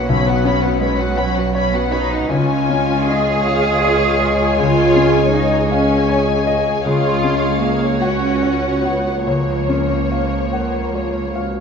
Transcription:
0.00 2.25 B1 medium
0.00 0.12 C#4 soft
0.00 0.10 F#4 soft
0.00 2.14 F#4 medium
0.00 0.31 B4 soft
0.00 0.12 C#5 soft
0.00 2.14 C#5 medium
0.00 0.10 F#5 soft
0.00 0.12 F#5 soft
0.09 2.26 B1 soft
0.09 0.81 B3 medium
0.09 0.27 C#4 medium
0.09 0.25 C#5 medium
0.09 0.27 B5 soft
0.26 0.46 F#4 soft
0.26 0.45 B4 soft
0.26 0.46 F#5 soft
0.45 1.03 C#4 soft
0.45 0.63 C#4 soft
0.45 0.63 C#5 soft
0.45 0.64 B5 soft
0.63 0.81 F#4 soft
0.63 0.81 B4 medium
0.63 0.81 F#5 soft
0.80 1.17 G#3 medium
0.80 0.98 C#4 soft
0.80 1.40 B4 soft
0.80 0.98 C#5 soft
0.80 0.99 B5 soft
0.99 1.18 F#4 soft
0.99 1.17 B4 soft
0.99 1.18 F#5 soft
1.17 1.73 F#3 medium
1.17 1.36 C#4 soft
1.17 1.36 C#5 soft
1.17 1.76 F#5 soft
1.17 1.36 B5 soft
1.36 1.54 F#4 soft
1.36 1.55 B4 soft
1.36 1.54 F#5 soft
1.55 1.72 C#4 medium
1.55 1.72 C#5 soft
1.55 2.14 C#5 soft
1.55 1.72 B5 soft
1.73 1.91 B3 medium
1.73 1.91 F#4 soft
1.73 1.91 B4 soft
1.73 1.92 F#5 soft
1.91 2.10 C#4 soft
1.91 2.29 D#4 medium
1.91 2.30 B4 soft
1.91 2.10 C#5 medium
1.91 2.11 B5 soft
2.10 2.30 F#4 soft
2.10 2.30 B4 soft
2.10 2.31 F#5 soft
2.30 4.54 C#2 medium
2.30 6.81 C#2 medium
2.30 3.09 C#4 medium
2.30 3.42 F4 medium
2.30 6.81 F4 medium
2.30 6.81 C#5 medium
2.30 7.98 D#5 medium
2.30 3.42 G#5 medium
2.70 3.31 C#4 soft
3.09 4.58 G#4 medium
3.09 3.68 D#5 soft
3.46 4.56 F4 medium
3.46 3.82 F5 medium
3.46 4.05 F5 soft
3.83 4.43 C#5 soft
3.83 4.19 F5 medium
4.21 4.81 D#5 soft
4.21 5.69 G#5 medium
4.57 6.81 C#2 medium
4.57 5.31 F4 medium
4.57 5.69 G#4 medium
4.96 5.56 C#4 soft
5.33 5.70 D#4 medium
5.33 5.94 D#5 medium
5.70 6.46 C#4 medium
5.70 7.97 G#4 medium
5.70 6.32 F5 soft
5.70 6.82 G#5 medium
6.09 6.70 C#5 soft
6.47 6.85 D#5 soft
6.84 11.51 C#2 medium
6.84 9.22 C#2 medium
6.84 10.40 C#4 medium
6.84 7.57 F4 medium
6.84 9.21 C#5 medium
6.84 8.01 F5 medium
7.24 7.86 C#4 soft
7.62 8.01 A#3 medium
7.62 8.26 F5 soft
8.01 8.83 C#4 medium
8.01 9.26 F#4 medium
8.01 10.36 C#5 medium
8.01 8.67 F#5 soft
8.01 9.26 F#5 soft
8.43 9.09 C#5 soft
8.83 9.25 B3 medium
8.83 9.52 F#5 soft
9.25 11.60 C#2 soft
9.25 11.50 F3 soft
9.25 11.31 A#3 medium
9.25 11.50 C#5 soft
9.25 11.51 C#5 soft
9.69 10.36 C#4 soft
10.12 10.78 F5 soft
10.53 10.91 A#4 soft
10.53 11.19 F#5 soft
10.95 11.36 F4 soft
10.95 11.60 C#5 soft
11.36 11.60 F#4 soft
11.36 11.60 F5 soft

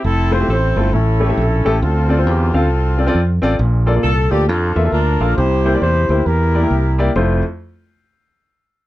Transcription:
0.04 0.42 F1 medium
0.04 0.90 C4 medium
0.04 0.49 E4 medium
0.04 0.32 A4 medium
0.31 0.37 A3 medium
0.31 0.37 E4 medium
0.31 0.37 F4 medium
0.31 0.48 C5 medium
0.31 0.37 C5 medium
0.40 0.52 A3 medium
0.40 0.52 E4 medium
0.40 0.52 F4 soft
0.40 0.52 G4 medium
0.48 0.72 A1 medium
0.48 0.91 E4 medium
0.48 0.91 A4 medium
0.48 0.90 C5 medium
0.76 0.91 G1 medium
0.76 0.87 A3 medium
0.76 0.87 E4 medium
0.76 0.87 F4 medium
0.76 0.87 A4 medium
0.93 1.31 A1 medium
0.93 1.61 A2 medium
0.93 1.79 C#4 medium
0.93 1.79 E4 medium
0.93 1.82 A4 medium
1.20 1.26 A3 medium
1.20 1.26 E4 medium
1.20 1.26 G4 medium
1.20 1.26 C#5 medium
1.29 1.40 A3 medium
1.29 1.41 E4 medium
1.29 1.41 G4 medium
1.29 1.41 E5 medium
1.37 1.61 A#1 medium
1.65 1.80 A1 medium
1.65 1.76 A3 medium
1.65 1.76 E4 medium
1.65 1.76 G4 medium
1.65 1.76 A4 medium
1.82 2.27 D2 loud
1.82 2.50 D3 medium
1.82 2.53 C4 medium
1.82 2.54 F4 medium
1.82 2.24 A4 medium
2.09 2.14 C4 medium
2.09 2.15 F4 medium
2.09 2.15 A4 medium
2.09 2.15 D5 medium
2.18 2.30 C4 medium
2.18 2.30 F4 soft
2.18 2.30 A4 medium
2.18 2.30 C5 medium
2.27 2.50 E2 medium
2.27 2.52 G4 medium
2.53 2.70 D2 medium
2.53 2.64 C4 medium
2.53 3.39 C4 medium
2.53 2.65 F4 medium
2.53 3.40 F4 medium
2.53 2.65 A4 medium
2.53 2.99 A4 medium
2.53 2.65 F5 medium
2.70 3.09 C2 medium
2.98 3.03 C4 medium
2.98 3.04 F4 medium
2.98 3.04 A4 medium
2.98 3.04 D5 medium
3.06 3.18 C4 medium
3.06 3.18 F4 medium
3.06 3.19 A4 medium
3.06 3.19 D5 medium
3.15 3.38 F2 medium
3.42 3.57 A1 medium
3.42 3.53 C4 medium
3.42 3.53 F4 medium
3.42 3.53 A4 medium
3.42 3.54 D5 medium
3.59 3.97 A#1 loud
3.59 4.28 A#2 medium
3.86 3.92 A#3 medium
3.86 3.92 F4 medium
3.86 3.92 A4 medium
3.86 3.93 D5 medium
3.95 4.07 A#3 medium
3.95 4.07 F4 medium
3.95 4.08 D5 medium
4.04 4.28 C2 medium
4.04 4.29 A4 medium
4.31 4.49 D2 medium
4.31 4.42 A#3 medium
4.31 4.42 F4 medium
4.31 4.48 G4 medium
4.31 4.42 A4 medium
4.31 4.42 D5 medium
4.47 4.72 F2 medium
4.47 4.92 D4 medium
4.47 4.92 F4 medium
4.47 4.89 A4 medium
4.75 4.91 E2 medium
4.75 4.81 A#3 medium
4.75 4.81 F4 medium
4.75 4.81 A4 medium
4.75 4.81 E5 medium
4.85 4.96 A#3 medium
4.85 4.96 F4 medium
4.85 4.97 A4 medium
4.85 4.97 E5 medium
4.92 5.16 D2 medium
4.92 5.35 D4 medium
4.92 5.35 F4 medium
4.92 5.37 A#4 loud
5.20 5.35 A#1 medium
5.20 5.31 A#3 medium
5.20 5.31 F4 medium
5.20 5.31 A4 medium
5.20 5.31 F5 medium
5.36 5.76 C2 loud
5.36 6.06 C3 medium
5.36 5.81 E4 medium
5.36 5.81 G4 medium
5.36 5.78 C5 medium
5.65 5.70 A#3 medium
5.65 5.70 E4 medium
5.65 5.71 G4 medium
5.65 5.71 C5 medium
5.74 5.85 A#3 medium
5.74 5.85 E4 medium
5.74 5.85 G4 medium
5.74 5.86 D5 medium
5.81 6.05 E2 medium
5.81 6.25 E4 medium
5.81 6.25 G4 medium
5.81 6.23 C5 medium
6.09 6.24 D2 medium
6.09 6.20 A#3 medium
6.09 6.20 E4 medium
6.09 6.20 G4 medium
6.09 6.21 C5 medium
6.25 6.64 E2 medium
6.25 7.11 E4 medium
6.25 7.11 G4 medium
6.25 6.98 A#4 medium
6.54 6.59 A#3 medium
6.54 6.60 E4 medium
6.54 6.60 G4 medium
6.54 6.60 D5 medium
6.63 6.74 A#3 medium
6.63 6.74 E4 medium
6.63 6.74 G4 medium
6.63 6.75 A#4 medium
6.71 7.09 C2 medium
6.98 7.09 A#3 medium
6.98 7.09 E4 medium
6.98 7.09 G4 medium
6.98 7.09 D5 medium
7.16 7.41 F1 medium
7.16 7.41 F2 medium
7.16 7.41 A3 medium
7.16 7.41 E4 medium
7.16 7.41 F4 medium
7.16 7.41 C5 medium

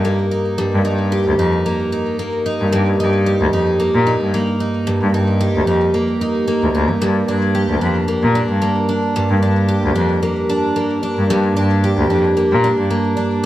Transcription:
0.00 0.57 G2 medium
0.00 0.30 D#4 medium
0.00 1.12 G4 medium
0.05 1.65 A#3 medium
0.31 0.84 D#4 medium
0.58 2.71 G2 medium
0.74 0.84 G2 loud
0.85 1.24 G2 medium
0.85 1.38 D#4 medium
1.12 3.26 G4 medium
1.28 1.37 D2 medium
1.39 1.52 F2 medium
1.39 1.91 D#4 medium
1.66 2.19 A#3 medium
1.92 2.45 D#4 medium
2.19 3.79 A#3 medium
2.46 2.99 D#4 medium
2.61 2.71 G2 medium
2.72 2.96 G2 loud
2.72 4.86 G2 medium
3.00 3.38 G2 medium
3.00 3.52 D#4 medium
3.26 5.40 G4 medium
3.41 3.51 D2 loud
3.53 3.66 F2 medium
3.53 4.05 D#4 medium
3.80 4.33 A#3 medium
3.95 4.17 A#2 loud
4.07 4.59 D#4 medium
4.22 4.32 G2 medium
4.34 5.94 A#3 medium
4.60 5.13 D#4 medium
4.87 7.00 G2 medium
5.03 5.12 G2 loud
5.14 5.52 G2 medium
5.14 5.66 D#4 medium
5.41 7.54 G4 medium
5.56 5.66 D2 loud
5.67 5.80 F2 medium
5.67 6.20 D#4 medium
5.94 6.47 A#3 medium
6.21 6.73 D#4 medium
6.48 8.07 A#3 medium
6.63 6.73 D2 medium
6.74 6.92 D2 medium
6.74 7.07 D#4 medium
6.90 7.00 G2 medium
7.01 7.25 G2 medium
7.01 9.15 G2 medium
7.28 7.66 G2 medium
7.28 7.80 D4 medium
7.55 9.68 G4 medium
7.70 7.80 D2 loud
7.81 7.95 F2 medium
7.81 8.34 D4 medium
8.08 8.61 A#3 medium
8.23 8.46 A#2 loud
8.35 8.87 D4 medium
8.50 8.60 G2 medium
8.62 10.22 A#3 medium
8.89 9.41 D4 medium
9.16 11.29 G2 medium
9.30 9.41 G2 loud
9.42 9.81 G2 medium
9.42 9.94 D4 medium
9.69 11.83 G4 medium
9.84 9.94 D2 loud
9.96 10.09 F2 medium
9.96 10.48 D4 medium
10.23 10.76 A#3 medium
10.49 11.02 D4 medium
10.76 12.36 A#3 medium
11.03 11.55 D4 medium
11.18 11.28 G2 medium
11.30 13.42 G2 medium
11.30 11.53 G2 medium
11.57 11.95 G2 medium
11.57 12.09 D4 medium
11.84 13.46 G4 medium
11.98 12.08 D2 loud
12.10 12.23 F2 medium
12.10 12.63 D4 medium
12.37 12.90 A#3 medium
12.52 12.74 A#2 loud
12.64 13.16 D4 medium
12.79 12.89 G2 loud
12.90 13.46 A#3 medium
13.17 13.46 D4 medium

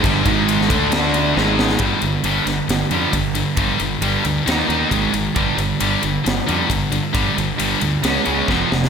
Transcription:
0.04 0.25 G1 loud
0.04 0.26 G2 loud
0.04 0.26 D3 loud
0.04 0.26 G3 loud
0.04 kick medium
0.04 ride loud
0.26 0.67 G#1 loud
0.26 0.70 G#2 medium
0.26 0.70 D#3 medium
0.26 0.70 G#3 medium
0.26 kick loud
0.26 ride medium
0.49 ride loud
0.61 snare soft
0.70 1.33 D2 medium
0.70 1.36 D3 medium
0.70 1.37 A3 medium
0.70 1.37 D4 medium
0.70 kick medium
0.70 ride medium
0.92 snare loud
0.92 ride loud
1.14 ride medium
1.37 1.78 G#1 loud
1.37 1.79 G#2 medium
1.37 1.80 D#3 loud
1.37 1.80 G#3 medium
1.37 snare medium
1.59 snare loud
1.70 snare medium
1.79 1.94 G1 medium
1.79 2.01 G2 medium
1.79 2.01 D3 medium
1.79 2.02 G3 loud
1.79 kick medium
1.79 ride medium
2.02 2.16 G1 medium
2.02 2.23 G2 medium
2.02 2.23 D3 medium
2.02 ride medium
2.24 2.38 G1 medium
2.24 2.45 G2 medium
2.24 2.46 D3 medium
2.24 2.46 G3 medium
2.24 ride medium
2.46 2.60 G1 medium
2.46 2.67 G2 medium
2.46 2.67 D3 medium
2.46 snare soft
2.46 ride medium
2.69 2.83 G1 medium
2.69 2.90 G2 medium
2.69 2.90 D3 medium
2.69 snare medium
2.69 ride medium
2.90 3.05 F2 medium
2.90 3.12 G2 medium
2.90 3.12 D3 loud
2.90 3.13 G3 loud
2.90 ride medium
3.13 3.41 G1 medium
3.13 3.33 G2 medium
3.13 3.34 D3 medium
3.13 kick medium
3.13 ride medium
3.35 3.56 G2 medium
3.35 3.56 D3 medium
3.35 ride medium
3.57 3.71 G1 medium
3.57 3.79 G2 loud
3.57 3.80 D3 loud
3.57 3.80 G3 loud
3.57 kick loud
3.57 ride medium
3.80 3.94 G1 medium
3.80 4.01 G2 medium
3.80 4.01 D3 medium
3.80 ride medium
4.02 4.16 G1 medium
4.02 4.24 G2 medium
4.02 4.24 D3 medium
4.02 4.25 G3 medium
4.02 ride medium
4.25 4.39 D2 medium
4.25 4.45 G2 medium
4.25 4.45 D3 medium
4.25 ride medium
4.47 4.61 D#2 medium
4.47 4.67 D#3 medium
4.47 4.67 A#3 medium
4.47 4.68 D#4 medium
4.47 snare loud
4.47 ride medium
4.68 4.83 D#2 medium
4.68 4.90 D#3 medium
4.68 4.90 A#3 medium
4.68 4.91 D#4 loud
4.68 ride medium
4.91 5.06 G#1 medium
4.91 5.12 G#2 medium
4.91 5.12 D#3 medium
4.91 5.13 G#3 medium
4.91 kick medium
4.91 ride medium
5.13 5.28 G#1 medium
5.13 5.34 G#2 medium
5.13 5.34 D#3 medium
5.13 ride medium
5.36 5.50 G1 medium
5.36 5.57 G2 loud
5.36 5.57 D3 medium
5.36 5.58 G3 loud
5.36 kick loud
5.36 ride medium
5.58 5.72 G1 medium
5.58 5.79 G2 medium
5.58 5.79 D3 medium
5.58 ride medium
5.80 5.95 G1 medium
5.80 6.01 G2 medium
5.80 6.02 D3 medium
5.80 6.02 G3 medium
5.80 ride medium
6.02 6.17 G1 medium
6.02 6.23 G2 medium
6.02 6.23 D3 medium
6.02 ride medium
6.25 6.40 G1 medium
6.25 6.45 G2 medium
6.25 6.45 D3 medium
6.25 snare loud
6.25 ride medium
6.47 6.63 F2 medium
6.47 6.68 G2 medium
6.47 6.69 D3 loud
6.47 6.69 G3 loud
6.47 ride medium
6.70 6.98 G1 medium
6.70 6.90 G2 medium
6.70 6.91 D3 medium
6.70 kick medium
6.70 ride medium
6.92 7.12 G2 medium
6.92 7.12 D3 medium
6.92 ride medium
7.13 7.29 G1 medium
7.13 7.35 G2 loud
7.13 7.35 D3 loud
7.13 7.36 G3 loud
7.13 kick loud
7.13 ride medium
7.37 7.52 G1 loud
7.37 7.57 G2 medium
7.37 7.57 D3 medium
7.37 ride medium
7.58 7.74 G1 medium
7.58 7.80 G2 medium
7.58 7.80 D3 medium
7.58 7.81 G3 medium
7.58 ride medium
7.81 7.96 D2 medium
7.81 8.02 G2 medium
7.81 8.03 D3 medium
7.81 ride medium
8.03 8.18 C#2 medium
8.03 8.25 C#3 medium
8.03 8.25 G#3 medium
8.03 8.26 C#4 medium
8.03 snare medium
8.03 ride medium
8.26 8.41 C#2 medium
8.26 8.47 C#3 medium
8.26 8.48 G#3 medium
8.26 8.48 C#4 medium
8.26 ride medium
8.48 8.63 F1 medium
8.48 8.70 F2 medium
8.48 8.71 C3 medium
8.48 8.71 F3 medium
8.48 kick medium
8.48 snare medium
8.71 8.86 F1 medium
8.71 8.89 F2 medium
8.71 8.89 C3 medium
8.71 snare medium
8.84 snare medium

